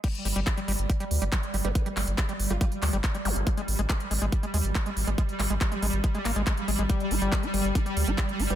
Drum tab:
CC |x---------------|----------------|----------------|----------------|
HH |xxoxxxoxxxoxxxox|xxoxxxoxxxoxxxox|xxoxxxoxxxoxxxox|xxoxxxoxxxoxxxox|
CP |----x-------x---|--x-x-----x-x---|----x-------x---|--x-x-----x-x---|
BD |o---o---o---o---|o---o---o---o---|o---o---o---o---|o---o---o---o---|

CC |----------------|
HH |xxoxxxoxxxoxxxox|
CP |----x-------x---|
BD |o---o---o---o---|